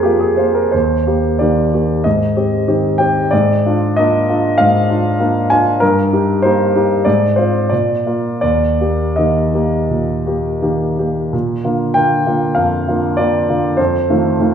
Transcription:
0.00 0.76 F2 soft
0.00 0.05 A#3 soft
0.00 0.06 F4 soft
0.00 0.21 G4 soft
0.00 0.20 G#4 soft
0.00 0.54 A#4 soft
0.00 0.37 C5 soft
0.05 0.36 F3 soft
0.05 0.36 A#3 soft
0.05 0.37 F4 soft
0.20 0.38 G#4 soft
0.37 0.70 A#3 soft
0.37 0.70 F4 soft
0.37 0.56 C5 soft
0.54 0.73 A#4 soft
0.72 1.06 D#2 soft
0.72 1.40 C5 medium
1.07 1.37 A#3 soft
1.07 1.37 G4 soft
1.39 1.70 D#3 soft
1.39 1.71 A#3 soft
1.39 1.71 G4 soft
1.39 2.04 D5 soft
1.74 2.02 A#3 soft
1.74 2.02 G4 soft
2.04 2.35 G#2 soft
2.04 2.99 D#5 medium
2.36 2.64 C4 soft
2.36 2.65 G4 soft
2.68 2.96 D#3 soft
2.68 2.96 C4 soft
2.68 2.97 G4 soft
2.98 3.29 C4 soft
2.98 3.29 G4 soft
2.98 3.31 G5 medium
3.31 3.64 G#2 soft
3.31 3.97 D5 medium
3.66 3.95 D4 soft
3.66 3.95 F4 soft
3.96 4.26 A#3 soft
3.96 4.26 D4 soft
3.96 4.26 F4 soft
3.96 4.59 D#5 medium
4.29 4.56 D4 soft
4.29 4.57 F4 soft
4.58 4.89 G#2 soft
4.58 5.49 F5 medium
4.90 5.17 D4 soft
4.90 5.17 F4 soft
5.20 5.47 A#3 soft
5.20 5.47 D4 soft
5.20 5.48 F4 soft
5.50 5.79 D4 soft
5.50 5.79 F4 soft
5.50 5.81 G#5 medium
5.80 6.12 G2 soft
5.80 6.43 A#4 medium
6.13 6.41 D#4 soft
6.13 6.41 G4 soft
6.42 6.73 A#3 soft
6.42 6.72 D#4 soft
6.42 6.73 G4 soft
6.42 7.06 C5 medium
6.76 7.04 D#4 soft
6.76 7.04 G4 soft
7.05 7.37 G#2 soft
7.05 7.37 D5 medium
7.36 7.68 C4 soft
7.36 7.68 F4 soft
7.36 7.70 C5 medium
7.69 8.05 A#2 soft
7.69 8.40 D5 medium
8.06 8.39 A#3 soft
8.06 8.39 F4 soft
8.41 8.79 D#2 soft
8.41 9.17 D5 medium
8.81 9.14 A#3 soft
8.81 9.14 G4 soft
9.16 9.51 D#3 soft
9.16 9.51 A#3 soft
9.16 9.51 G4 soft
9.16 10.62 D#5 soft
9.54 9.87 A#3 soft
9.54 9.87 G4 soft
9.90 10.25 A#2 soft
10.26 10.59 A#3 soft
10.26 10.59 G4 soft
10.62 10.95 D#3 soft
10.62 10.95 A#3 soft
10.62 10.95 G4 soft
10.99 11.29 A#3 soft
10.99 11.30 G4 soft
11.33 11.63 A#2 soft
11.64 11.92 D3 soft
11.64 11.92 A#3 soft
11.64 11.93 F4 soft
11.94 12.23 D3 soft
11.94 12.23 A#3 soft
11.94 12.24 F4 soft
11.94 12.56 G5 medium
12.26 12.53 D3 soft
12.26 12.54 A#3 soft
12.26 12.54 F4 soft
12.55 12.86 F2 soft
12.55 13.17 F5 medium
12.87 13.15 D3 soft
12.87 13.16 A#3 soft
12.87 13.16 F4 soft
13.17 13.46 D3 soft
13.17 13.46 A#3 soft
13.17 13.46 F4 soft
13.17 13.78 D5 medium
13.49 13.76 D3 soft
13.49 13.76 A#3 soft
13.49 13.76 F4 soft
13.77 14.08 F2 soft
13.77 14.54 C5 medium
14.10 14.37 D#3 soft
14.10 14.37 A3 soft
14.10 14.37 F4 soft
14.40 14.54 D#3 soft
14.40 14.54 A3 soft
14.40 14.54 F4 soft

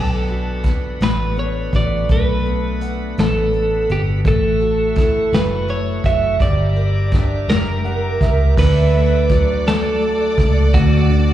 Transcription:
0.00 0.97 B1 medium
0.00 0.63 B3 medium
0.00 4.21 D4 soft
0.00 0.62 A4 medium
0.00 6.36 A4 medium
0.00 4.21 F#5 soft
0.00 4.21 B5 medium
0.27 0.99 F#4 soft
0.27 closed hi-hat soft
0.64 1.35 B3 soft
0.64 kick medium
0.64 closed hi-hat medium
1.00 1.69 A1 medium
1.00 1.72 F#4 soft
1.00 1.39 B4 medium
1.00 snare medium
1.00 closed hi-hat medium
1.36 2.44 B3 soft
1.36 1.75 C#5 medium
1.36 closed hi-hat soft
1.73 2.07 A1 medium
1.73 3.14 F#4 soft
1.73 2.11 D5 medium
1.73 kick medium
1.73 closed hi-hat medium
2.09 3.14 B1 medium
2.09 4.21 A3 medium
2.09 3.22 B4 medium
2.09 kick loud
2.09 closed hi-hat medium
2.45 3.16 B3 soft
2.45 closed hi-hat soft
2.81 4.21 F#5 medium
2.81 closed hi-hat medium
3.17 3.86 A1 medium
3.17 3.88 B3 soft
3.17 3.91 A4 medium
3.17 snare medium
3.17 closed hi-hat medium
3.53 4.23 A4 medium
3.53 closed hi-hat soft
3.89 4.23 G1 medium
3.89 4.24 B3 medium
3.89 4.01 G4 medium
3.89 closed hi-hat medium
4.25 5.28 A1 medium
4.25 5.66 A3 medium
4.25 5.37 A4 medium
4.25 6.38 E5 medium
4.25 6.38 F#5 medium
4.25 6.38 C#6 medium
4.25 kick loud
4.25 closed hi-hat medium
4.60 5.31 F#4 medium
4.60 closed hi-hat soft
4.96 6.36 E4 medium
4.96 kick medium
4.96 closed hi-hat medium
5.32 6.00 F#1 medium
5.32 6.03 F#4 medium
5.32 5.70 B4 medium
5.32 snare medium
5.32 closed hi-hat medium
5.68 6.38 A3 medium
5.68 6.05 C#5 medium
5.68 closed hi-hat soft
6.04 6.38 F#1 medium
6.04 6.39 F#4 medium
6.04 6.41 E5 loud
6.04 kick medium
6.04 closed hi-hat medium
6.39 7.44 G1 loud
6.39 7.84 G3 medium
6.39 8.55 G4 medium
6.39 7.45 D5 medium
6.39 8.55 E5 medium
6.39 8.55 A#5 medium
6.39 8.55 D6 medium
6.39 kick loud
6.39 closed hi-hat medium
6.76 7.47 A#4 medium
6.76 closed hi-hat soft
7.12 8.53 D4 medium
7.12 kick medium
7.12 snare soft
7.12 closed hi-hat medium
7.48 8.17 F#1 medium
7.48 8.19 A#4 medium
7.48 8.58 A#4 medium
7.48 snare medium
7.48 closed hi-hat medium
7.85 8.55 G3 medium
7.85 8.18 F#5 medium
7.85 closed hi-hat soft
8.21 8.55 C#2 medium
8.21 8.56 A#4 medium
8.21 8.55 E5 medium
8.21 kick medium
8.21 closed hi-hat medium
8.57 10.34 D2 loud
8.57 10.70 D4 medium
8.57 11.34 A4 medium
8.57 9.67 B4 medium
8.57 11.34 D5 medium
8.57 9.26 E5 medium
8.57 11.34 F#5 medium
8.57 11.34 D6 medium
8.57 kick loud
8.57 crash medium
8.94 9.65 A3 medium
8.94 closed hi-hat soft
9.29 10.70 F#3 medium
9.29 11.34 D5 loud
9.29 kick medium
9.29 closed hi-hat medium
9.66 10.37 A3 medium
9.66 10.78 A4 medium
9.66 snare loud
9.66 closed hi-hat medium
10.02 closed hi-hat soft
10.38 10.72 C#2 medium
10.38 11.34 A3 medium
10.38 kick medium
10.38 closed hi-hat medium
10.74 11.34 D2 loud
10.74 11.34 A2 medium
10.74 11.34 F#4 medium
10.74 kick loud
10.74 closed hi-hat medium
11.09 11.34 D3 medium
11.09 closed hi-hat soft

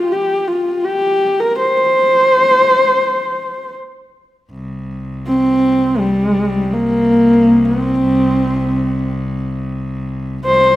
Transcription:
0.00 0.13 F4 medium
0.12 0.49 G4 medium
0.48 0.86 F4 medium
0.85 1.42 G4 medium
1.40 1.58 A#4 medium
1.59 3.74 C5 medium
4.51 10.43 C2 medium
5.27 6.00 C4 loud
5.99 6.74 G3 medium
6.73 7.66 A#3 medium
7.65 9.12 C4 medium
10.44 10.76 C2 medium
10.44 10.76 C5 loud

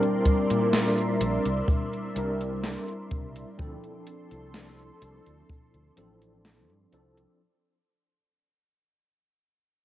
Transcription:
0.00 2.10 G3 medium
0.00 2.10 C4 medium
0.00 2.11 D4 medium
0.00 2.11 E4 medium
0.00 2.12 A#4 medium
0.00 3.55 A#4 medium
0.00 7.36 D5 medium
0.00 3.55 E5 medium
0.00 3.55 C6 medium
0.00 closed hi-hat soft
0.25 kick medium
0.25 closed hi-hat medium
0.50 1.22 A#2 medium
0.50 closed hi-hat medium
0.73 snare loud
0.73 closed hi-hat medium
0.98 closed hi-hat soft
1.21 1.37 A#1 loud
1.21 closed hi-hat medium
1.46 1.61 C2 medium
1.46 closed hi-hat medium
1.68 kick loud
1.68 closed hi-hat medium
1.93 closed hi-hat soft
2.15 2.75 C2 medium
2.15 3.53 G3 medium
2.15 3.53 C4 medium
2.15 3.53 D4 medium
2.15 3.54 E4 medium
2.15 3.54 A#4 medium
2.15 closed hi-hat medium
2.41 closed hi-hat soft
2.64 snare loud
2.64 closed hi-hat soft
2.88 closed hi-hat soft
3.11 3.43 C2 medium
3.11 kick loud
3.11 closed hi-hat medium
3.36 closed hi-hat medium
3.57 3.75 D2 medium
3.57 5.91 F3 medium
3.57 5.91 C4 medium
3.57 5.91 D4 medium
3.57 5.92 E4 medium
3.57 7.36 A4 medium
3.57 5.92 A4 loud
3.57 7.36 C6 medium
3.57 kick loud
3.57 closed hi-hat soft
3.84 closed hi-hat soft
4.07 closed hi-hat medium
4.31 4.89 C2 medium
4.31 closed hi-hat medium
4.54 snare loud
4.54 closed hi-hat soft
4.79 closed hi-hat soft
5.02 5.18 C2 medium
5.02 closed hi-hat medium
5.26 5.42 D2 medium
5.26 closed hi-hat soft
5.49 kick loud
5.49 closed hi-hat medium
5.74 5.89 D2 medium
5.74 closed hi-hat soft
5.96 6.70 A1 medium
5.96 6.86 F3 medium
5.96 6.86 C4 medium
5.96 6.87 D4 medium
5.96 6.87 E4 medium
5.96 6.87 A4 medium
5.96 closed hi-hat medium
6.22 closed hi-hat medium
6.45 snare loud
6.45 closed hi-hat soft
6.70 6.85 G2 loud
6.70 closed hi-hat soft
6.92 7.24 C2 medium
6.92 7.34 F3 medium
6.92 7.34 C4 medium
6.92 7.34 D4 medium
6.92 7.34 E4 medium
6.92 7.35 A4 medium
6.92 closed hi-hat medium
7.17 closed hi-hat medium

